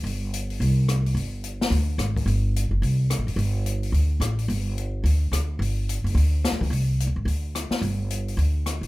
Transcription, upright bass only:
X:1
M:4/4
L:1/8
Q:"Swing" 1/4=216
K:Cmix
V:1 name="Upright bass" clef=bass
G,,,4 C,,4 | G,,,4 D,,2 _A,,,2 | G,,,3 ^F,,, C,,2- (3C,, A,,, F,,, | G,,,4 D,,2 A,,,2 |
G,,,4 D,,2 D,,2 | G,,,3 ^F,,, D,,2- (3D,, E,, D,, | C,,2- (3C,, D,, _A,,, D,,3 z | G,,,4 D,,3 A,,, |]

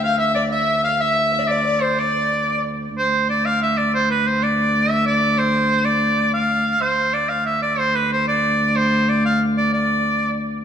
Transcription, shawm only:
X:1
M:6/8
L:1/8
Q:3/8=124
K:Dm
V:1 name="Shawm"
f e d e2 f | e3 d2 c | d4 z2 | c2 d f e d |
c =B c d3 | e d2 c3 | d3 f3 | c2 d f e d |
c =B c d3 | c2 d f z d | d4 z2 |]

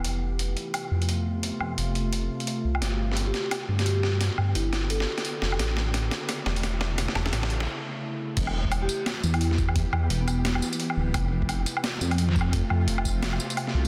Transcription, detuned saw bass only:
X:1
M:4/4
L:1/8
Q:"Swing 16ths" 1/4=173
K:Ephr
V:1 name="Detuned saw bass" clef=bass
F,,,3 z2 F,,3 | z F,, F,,,3 z2 C,, | G,,,3 z2 G,,3 | z G,, G,,,3 z2 F,,, |
A,,,3 z2 E,,,3 | z E,,, A,,,2 z4 | E,,,3 z2 E,,3 | z E,, E,,,3 z2 D,,, |
F,,,3 z2 F,,3 | z F,, F,,,3 z2 C,, |]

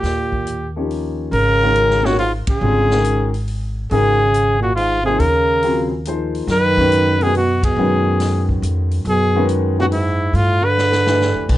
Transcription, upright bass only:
X:1
M:3/4
L:1/8
Q:"Swing" 1/4=140
K:Ebmix
V:1 name="Upright bass" clef=bass
E,,6 | [K:F#dor] G,,,4- G,,, z | G,,,6 | G,,,6 |
D,,6 | F,,6 | F,,4 ^E,,2 | F,,6 |
=G,,4- (3G,, =F,, B,,, |]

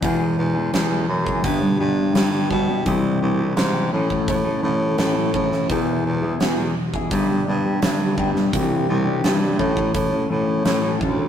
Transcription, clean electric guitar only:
X:1
M:4/4
L:1/16
Q:1/4=85
K:A
V:1 name="Clean electric guitar"
[E,,B,,E,G,B,G]3 [E,G,B,G] [E,,B,,E,G,B,G] [E,G,B,G]2 [E,G,B,G] [=G,,D,=G,B,D=G] [G,B,DG] [G,B,DG]2 [G,,D,G,B,DG] [G,B,DG] [G,B,DG] [G,B,DG] | [=C,E,=G,D=G]3 [G,DG] [C,E,G,DG] [G,DG] [A,,E,A,^CA] [A,CA]2 [A,CA] [E,A,CA]2 [A,,E,A,CA] [A,CA] [E,A,CA] [A,CA] | [E,,B,,E,B,EG]3 [E,B,EG] [E,,B,,E,B,EG] [E,B,EG]2 [E,B,EG] [=G,,D,=G,B,D=G] [G,B,DG] [G,B,DG]2 [G,,D,G,B,DG] [G,B,DG] [G,B,DG] [G,B,DG] | [=C,E,=G,D=G]3 [G,DG] [C,E,G,DG] [G,DG] [A,,E,A,^CA] [A,CA]2 [A,CA] [E,A,CA]2 [A,,E,A,CA] [A,CA] [E,A,CA] [A,CA] |]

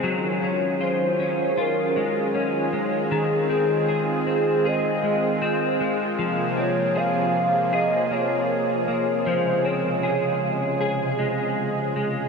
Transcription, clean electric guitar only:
X:1
M:4/4
L:1/8
Q:1/4=78
K:Ebdor
V:1 name="Clean electric guitar"
G, D F D F A, D A, | E, C A C A A, C A, | F, C A2 A B,2 B, | F, C A2 A A,2 A, |]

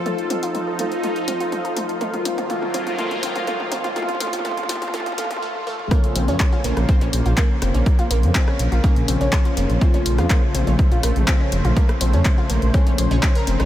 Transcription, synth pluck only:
X:1
M:4/4
L:1/16
Q:1/4=123
K:Bbm
V:1 name="Synth pluck"
=A, z C F z =A A, z A, z C F z A A, z | =A, z C F A, z C F A, z C F A, z C F | =A, z A, z A, z A, z A, z A, z A, z A, z | B, z C D z F B, z C D z F B, z C D |
z F B, z C D z F B, z C D z F B, z | C D z F B, z C D z F B, z C D z F | B, z C D z F B, z C D c D D B C D |]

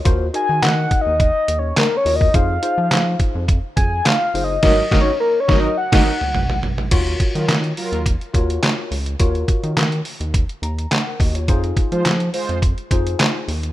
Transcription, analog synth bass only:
X:1
M:4/4
L:1/16
Q:1/4=105
K:Ebdor
V:1 name="Analog synth bass" clef=bass
E,,2 z E, E,2 z E,,2 z E,,2 z2 E,,2 | F,,2 z F, F,2 z F,,2 z F,,2 z2 G,,,2 | A,,,2 A,,,2 z2 A,,,2 z A,,,2 z4 z | E,,2 z E, E,2 z E,,2 z E,,2 z2 D,,2 |
E,,2 z E, E,2 z E,,2 z E,,2 z2 E,,2 | F,,2 z F, F,2 z F,,2 z F,,2 z2 E,,2 |]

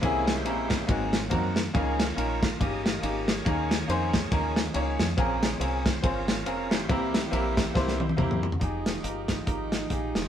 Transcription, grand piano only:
X:1
M:4/4
L:1/8
Q:"Swing" 1/4=140
K:Fm
V:1 name="Grand piano"
[B,CD=EA] z [B,CDEB] z [B,C_E_GA] z [B,CEGB] z | [B,DEFA] z [B,DEFB] z [B,DEFG] z [B,DEFG] z | [B,DEAB] z [B,DEAc] z [B,DEAB] z [B,DEAd] z | [CDFAB] z [CDFAB] z [CDFAc] z [CDFAB] z |
[B,C=EGB] z [B,CEGB] z [B,CEGc] z [B,CEGB] z | [EFGA] z [EFGB] z [EFGB] z [EFGA] z |]
V:2 name="Grand piano" clef=bass
C,3 z A,,3 z | D,3 z4 z | E,3 z4 z | B,,3 z4 z |
C,3 z4 z | z8 |]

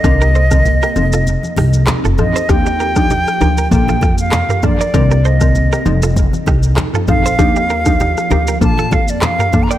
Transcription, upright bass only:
X:1
M:4/4
L:1/16
Q:"Swing 16ths" 1/4=98
K:Bb
V:1 name="Upright bass" clef=bass
C,,4- C,, z F,,,3 z C,,2 z F,,, B,,, z | E,,4- E,, z D,,2 B,,,2 F,,3 z3 | C,,4- C,, z F,,,3 z C,,2 z2 B,,,2 | E,,4- E,, z D,,2 B,,,2 F,,3 z3 |]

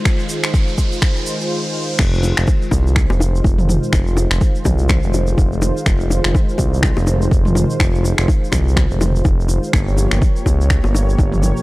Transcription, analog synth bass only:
X:1
M:4/4
L:1/16
Q:"Swing 16ths" 1/4=124
K:Fm
V:1 name="Analog synth bass" clef=bass
z16 | F,,,3 F,,, z2 C,,3 F,,,3 F,,,3 z | F,,,3 F,,, z2 C,,3 F,,,3 F,,,3 z | F,,,3 F,,, z2 C,,3 F,,,3 F,,,3 z |
F,,,3 F,,, z2 C,,3 F,,,3 F,,,3 z | G,,,3 G,,, z2 D,,3 G,,,3 G,,,3 z |]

